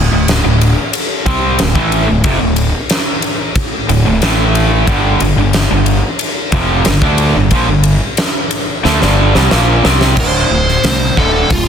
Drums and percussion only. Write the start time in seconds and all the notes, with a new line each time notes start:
0.28 snare, ride
0.61 ride
0.93 ride
1.26 kick, ride
1.59 snare, ride
1.75 kick
1.92 ride
2.24 kick, ride
2.56 ride
2.90 snare, ride
3.22 ride
3.55 kick, ride
3.89 ride
4.22 snare, ride
4.55 ride
4.87 kick, ride
5.20 ride
5.53 snare, ride
5.86 ride
6.19 ride
6.52 kick, ride
6.85 snare, ride
7.02 kick
7.18 ride
7.51 kick, ride
7.83 ride
8.17 snare, ride
8.51 ride
8.85 snare
9.02 snare
9.35 snare
9.51 snare
9.85 snare
10.01 snare
10.17 kick, crash
10.69 snare
10.84 snare, open hi-hat
11.17 kick
11.50 kick, open hi-hat